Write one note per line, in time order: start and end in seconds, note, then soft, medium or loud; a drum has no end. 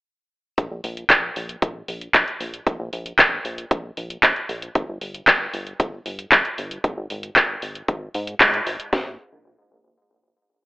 0.58 0.68 A#1 loud
0.58 kick loud
0.58 closed hi-hat medium
0.71 0.81 A#1 loud
0.84 1.04 A#1 loud
0.84 open hi-hat loud
0.97 closed hi-hat medium
1.10 1.30 A#1 medium
1.10 kick loud
1.10 clap loud
1.10 closed hi-hat medium
1.36 1.56 A#1 medium
1.36 open hi-hat medium
1.49 closed hi-hat medium
1.62 1.83 A#1 medium
1.62 kick loud
1.62 closed hi-hat medium
1.88 2.09 A#1 medium
1.88 open hi-hat loud
2.01 closed hi-hat medium
2.14 2.25 A#1 loud
2.14 kick loud
2.14 clap loud
2.14 closed hi-hat medium
2.28 closed hi-hat soft
2.40 2.61 A#1 medium
2.40 open hi-hat loud
2.54 closed hi-hat medium
2.67 2.77 A#1 medium
2.67 kick loud
2.67 closed hi-hat medium
2.80 2.90 A#1 loud
2.93 3.13 A#1 loud
2.93 open hi-hat loud
3.06 closed hi-hat medium
3.19 3.39 A#1 medium
3.19 kick loud
3.19 clap loud
3.19 closed hi-hat medium
3.45 3.65 A#1 medium
3.45 open hi-hat medium
3.58 closed hi-hat soft
3.71 3.91 A#1 medium
3.71 kick loud
3.71 closed hi-hat medium
3.97 4.17 A#1 medium
3.97 open hi-hat loud
4.10 closed hi-hat medium
4.23 4.33 A#1 loud
4.23 kick loud
4.23 clap loud
4.23 closed hi-hat medium
4.36 closed hi-hat soft
4.49 4.69 A#1 medium
4.49 open hi-hat medium
4.62 closed hi-hat medium
4.75 4.85 G1 loud
4.75 kick loud
4.75 closed hi-hat medium
4.88 4.98 G1 loud
5.01 5.22 G1 medium
5.01 open hi-hat loud
5.14 closed hi-hat medium
5.27 5.48 G1 loud
5.27 kick loud
5.27 clap loud
5.27 closed hi-hat medium
5.54 5.74 G1 medium
5.54 open hi-hat medium
5.67 closed hi-hat medium
5.80 6.00 G1 medium
5.80 kick loud
5.80 closed hi-hat medium
6.06 6.26 G1 medium
6.06 open hi-hat loud
6.19 closed hi-hat medium
6.32 6.42 G1 loud
6.32 kick loud
6.32 clap loud
6.32 closed hi-hat medium
6.45 closed hi-hat soft
6.58 6.78 G1 loud
6.58 open hi-hat medium
6.71 closed hi-hat medium
6.84 6.94 G#1 loud
6.84 kick loud
6.84 closed hi-hat medium
6.97 7.07 G#1 loud
7.10 7.30 G#1 medium
7.10 open hi-hat loud
7.23 closed hi-hat medium
7.36 7.56 G#1 medium
7.36 kick loud
7.36 clap loud
7.36 closed hi-hat medium
7.62 7.83 G#1 medium
7.62 open hi-hat medium
7.75 closed hi-hat soft
7.88 8.09 G#1 medium
7.88 kick loud
7.88 closed hi-hat medium
8.14 8.35 G#2 loud
8.14 open hi-hat loud
8.27 closed hi-hat medium
8.41 8.61 G#2 medium
8.41 kick loud
8.41 clap loud
8.41 closed hi-hat medium
8.54 closed hi-hat soft
8.67 8.77 G#1 loud
8.67 open hi-hat medium
8.80 closed hi-hat medium
8.93 9.17 A#1 loud
8.93 kick loud
8.93 snare loud